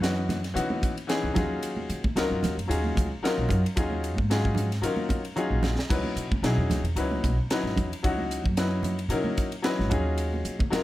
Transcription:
Already playing: upright bass F#2
0.00 grand piano E3 B3 C#4 D#4 F#4, snare, hi-hat pedal, ride
0.29 snare, hi-hat pedal, ride, high conga, low conga
0.44 snare, ride
0.54 upright bass C#3, grand piano E3 B3 C#4 D#4 F#4, hi-hat pedal, ride
0.70 high conga
0.82 kick, hi-hat pedal, ride, high conga
0.97 ride
1.07 grand piano E3 B3 C#4 D#4 G#4, snare, hi-hat pedal, ride
1.23 upright bass C#2
1.34 upright bass D#2, grand piano F#3 C#4 D#4 F4 G#4, kick, snare, hi-hat pedal, ride, low conga
1.63 hi-hat pedal, ride
1.77 high conga
1.89 upright bass D#3, hi-hat pedal, ride
2.04 upright bass D#3, kick, high conga
2.16 upright bass C#2, grand piano F#3 C#4 D#4 F4 A#4, snare, hi-hat pedal, ride
2.31 upright bass F#2
2.43 upright bass D#2, snare, hi-hat pedal, ride, high conga, low conga
2.58 upright bass F#2, ride
2.68 upright bass D#2, grand piano F#3 C#4 D#4 F4 G#4, hi-hat pedal, ride
2.84 high conga
2.96 upright bass C#2, kick, hi-hat pedal, ride, high conga
3.22 grand piano F#3 C#4 D#4 F4 A#4, muted upright bass stroke, snare, hi-hat pedal, ride
3.38 upright bass A#1
3.49 upright bass F#2, kick, hi-hat pedal, ride, low conga
3.66 ride
3.76 upright bass D#2, grand piano F#3 C#4 D#4 F4 G#4, kick, hi-hat pedal, ride
3.90 high conga
4.04 hi-hat pedal, ride
4.17 upright bass G#2, kick, high conga
4.30 grand piano F#3 C#4 D#4 F4 G#4, snare, hi-hat pedal, ride
4.45 kick
4.55 hi-hat pedal, ride, low conga
4.72 snare, ride
4.82 upright bass D#3, grand piano F#3 C#4 D#4 F4 A#4, hi-hat pedal, ride
4.96 high conga
5.09 kick, hi-hat pedal, ride, high conga
5.25 ride
5.36 grand piano F#3 C#4 D#4 F4 G#4, hi-hat pedal, high tom
5.50 upright bass A#1
5.63 snare, hi-hat pedal, low conga
5.79 snare
5.89 upright bass C#2, grand piano F#3 C#4 D#4 E4 B4, kick, hi-hat pedal, ride, crash
6.04 high conga
6.16 upright bass C#3, hi-hat pedal, ride
6.31 upright bass C#3, kick, high conga
6.42 upright bass B1, grand piano F#3 C#4 D#4 E4 G#4, snare, hi-hat pedal, ride
6.57 upright bass E2
6.70 upright bass C#2, snare, hi-hat pedal, ride, high conga, low conga
6.83 upright bass E2, ride
6.95 upright bass C#2, grand piano F#3 C#4 D#4 E4 B4, hi-hat pedal, ride
7.12 high conga
7.24 upright bass B1, kick, hi-hat pedal, ride, high conga
7.50 grand piano F#3 C#4 D#4 E4 B4, snare, hi-hat pedal, ride
7.63 upright bass G#1, snare
7.76 upright bass E2, kick, hi-hat pedal, ride, low conga
7.93 ride
8.03 upright bass C#2, grand piano F#3 C#4 D#4 E4 F#4, kick, hi-hat pedal, ride
8.18 high conga
8.31 hi-hat pedal, ride
8.44 upright bass F#2, kick, high conga
8.57 grand piano F#3 C#4 D#4 E4 B4, snare, hi-hat pedal, ride
8.83 hi-hat pedal, ride, high conga, low conga
8.99 ride
9.09 upright bass C#3, grand piano F#3 C#4 D#4 E4 A#4, hi-hat pedal, ride
9.24 high conga
9.37 kick, hi-hat pedal, ride
9.52 ride
9.62 grand piano F#3 C#4 D#4 E4 B4, snare, hi-hat pedal, ride
9.79 upright bass G#1, snare
9.90 upright bass D#2, grand piano F#3 C#4 D#4 F4 G#4, kick, hi-hat pedal, ride, low conga
10.18 hi-hat pedal, ride
10.34 high conga
10.45 upright bass D#3, hi-hat pedal, ride
10.59 upright bass D#3, kick, high conga
10.70 upright bass C#2, grand piano F#3 C#4 D#4 F4 A#4, snare, hi-hat pedal, ride

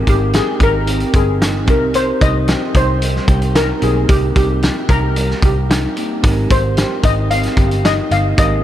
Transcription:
Already playing: clean electric guitar G#3 C4 G4, tine electric piano C4 D#4 G4 A#4
0.07 picked electric bass G#1, clean electric guitar D#4, steel pan G4, kick, closed hi-hat
0.33 clean electric guitar G4, steel pan G#4, snare, closed hi-hat
0.60 picked electric bass G#1, clean electric guitar D#4, steel pan A#4, kick, closed hi-hat
0.86 tine electric piano C4 D#4 A#4 G5, clean electric guitar C4, closed hi-hat
1.00 closed hi-hat
1.14 picked electric bass G1, steel pan G#4, kick, closed hi-hat
1.41 clean electric guitar D#4, snare, closed hi-hat
1.66 picked electric bass C2, clean electric guitar C3, tine electric piano C4 D#4 G4, kick, closed hi-hat
1.70 steel pan A#4, tine electric piano A#4
1.94 clean electric guitar C3, steel pan C5, closed hi-hat
2.21 picked electric bass C2, clean electric guitar D#4, steel pan D#5, kick, closed hi-hat
2.48 clean electric guitar G4, snare, closed hi-hat
2.75 picked electric bass C2, clean electric guitar D#4, steel pan C5, kick, closed hi-hat
3.01 clean electric guitar G3, closed hi-hat
3.16 snare
3.28 picked electric bass C2, clean electric guitar G4, kick, closed hi-hat
3.42 closed hi-hat
3.55 clean electric guitar D#4, steel pan A#4, snare, closed hi-hat
3.80 picked electric bass B1, clean electric guitar A#3, tine electric piano C4 D#4 G4, steel pan G#4, closed hi-hat
3.85 tine electric piano A#4
4.08 picked electric bass C2, clean electric guitar C3, steel pan G4, kick, closed hi-hat
4.36 picked electric bass C2, clean electric guitar D#4, steel pan G4, kick, closed hi-hat
4.62 clean electric guitar G4, snare, closed hi-hat
4.89 picked electric bass C2, clean electric guitar D#4, steel pan A#4, kick, closed hi-hat
5.16 clean electric guitar G3, closed hi-hat
5.31 snare
5.42 picked electric bass C2, clean electric guitar G4, steel pan G4, kick, closed hi-hat
5.69 clean electric guitar D#4, snare, closed hi-hat
5.97 clean electric guitar A#3, closed hi-hat
6.22 picked electric bass G#1, clean electric guitar G#3, tine electric piano C4 D#4 G4, kick, closed hi-hat
6.27 tine electric piano A#4
6.50 picked electric bass G#1, steel pan C5, kick, closed hi-hat
6.77 clean electric guitar G4, snare, closed hi-hat
7.03 picked electric bass G#1, clean electric guitar D#4, steel pan D#5, kick, closed hi-hat
7.31 clean electric guitar C4, steel pan F5, closed hi-hat
7.43 snare, closed hi-hat
7.57 picked electric bass G1, clean electric guitar G4, kick, closed hi-hat
7.71 closed hi-hat
7.85 clean electric guitar D#4, steel pan D#5, snare, closed hi-hat
8.11 picked electric bass G1, clean electric guitar C4, steel pan F5, closed hi-hat
8.35 picked electric bass G#1, clean electric guitar G#3, tine electric piano A#3 D#4 G4, kick, closed hi-hat
8.39 tine electric piano C4 A#4, steel pan D#5

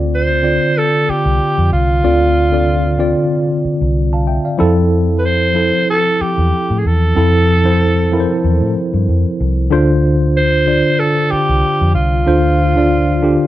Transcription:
Already playing: fingered electric bass D2, tine electric piano D3 C4 F4 D5
0.15 alto saxophone C5
0.42 tine electric piano D3 C4 F4 D5
0.78 alto saxophone A4
1.09 alto saxophone G4, muted fingered electric bass stroke
1.25 fingered electric bass C2
1.58 fingered electric bass F2
1.72 fingered electric bass C2, alto saxophone F4
2.03 fingered electric bass D2, tine electric piano D3 C4 F4 D5
2.52 tine electric piano D3 C4 F4 D5
2.98 tine electric piano D3 C4 F4 D5
3.65 muted fingered electric bass stroke
3.81 fingered electric bass C2
4.13 tine electric piano F5 A5
4.27 tine electric piano E5 G5
4.45 tine electric piano D5 F5
4.58 fingered electric bass F2, tine electric piano F3 C4 E4 A4
5.19 alto saxophone B4
5.26 alto saxophone C5
5.54 tine electric piano F3 C4 E4 A4
5.90 alto saxophone A4
6.21 alto saxophone G4, muted fingered electric bass stroke
6.38 fingered electric bass E2
6.70 fingered electric bass A2
6.79 alto saxophone G#4
6.85 fingered electric bass E2, alto saxophone A4
7.15 fingered electric bass F2, tine electric piano F3 C4 E4 A4
7.64 tine electric piano F3 C4 E4 C5
8.11 tine electric piano F3 C4 E4 A#4
8.20 tine electric piano C5
8.44 fingered electric bass E2
8.61 fingered electric bass A2
8.94 fingered electric bass G2
9.08 fingered electric bass F2
9.41 fingered electric bass C2
9.70 fingered electric bass D2, tine electric piano D3 D4 F4 C5
10.37 alto saxophone C5
10.66 tine electric piano D3 D4 F4 D5
10.99 alto saxophone A4
11.31 alto saxophone G4, muted fingered electric bass stroke
11.49 fingered electric bass C2
11.81 fingered electric bass F2
11.95 fingered electric bass C2, alto saxophone F4
12.26 fingered electric bass D2, tine electric piano D3 D4 F4 C5
12.76 tine electric piano D3 D4 F4 D5
13.22 tine electric piano D3 D4 F4 G4

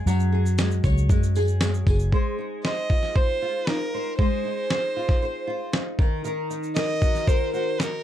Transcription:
Already playing: nylon-string guitar G#3 G#4 C#5
0.06 fingered electric bass F#2, nylon-string guitar F#3, tambourine, shaker
0.20 shaker
0.32 nylon-string guitar G#4
0.46 shaker
0.58 nylon-string guitar G#3, snare, tambourine, shaker
0.71 shaker
0.84 fingered electric bass C#2, nylon-string guitar C#5, kick, tambourine, shaker
0.98 shaker
1.09 fingered electric bass F#2, nylon-string guitar G#3, kick, tambourine, shaker
1.23 shaker
1.35 nylon-string guitar G#4, tambourine, shaker
1.47 shaker
1.61 nylon-string guitar G#3, snare, tambourine, shaker
1.74 shaker
1.87 fingered electric bass F#1, nylon-string guitar G#4, kick, tambourine
1.99 shaker
2.12 nylon-string guitar G#3 C5, kick
2.39 nylon-string guitar D#4
2.65 nylon-string guitar C5, violin D#5, snare
2.90 nylon-string guitar F4, kick
3.03 snare
3.15 nylon-string guitar C5, violin C5, kick
3.42 nylon-string guitar F4
3.67 nylon-string guitar D#4, violin A#4, snare
3.94 nylon-string guitar C5
4.19 nylon-string guitar G#3 C5, violin C5, kick
4.45 nylon-string guitar D#4
4.70 nylon-string guitar C5, snare
4.96 nylon-string guitar F4
5.08 kick, snare
5.22 nylon-string guitar C5
5.47 nylon-string guitar F4
5.73 nylon-string guitar D#4, snare
5.99 nylon-string guitar D#3, kick
6.24 nylon-string guitar D#3 A#4, shaker
6.50 nylon-string guitar D#4, shaker
6.63 shaker
6.76 nylon-string guitar A#4, violin D#5, snare, shaker
7.02 nylon-string guitar F#4, kick, shaker
7.15 snare, shaker
7.27 nylon-string guitar A#4, violin C5, kick, shaker
7.53 nylon-string guitar F#4, violin C5, shaker
7.79 nylon-string guitar D#4, violin A#4, snare, shaker

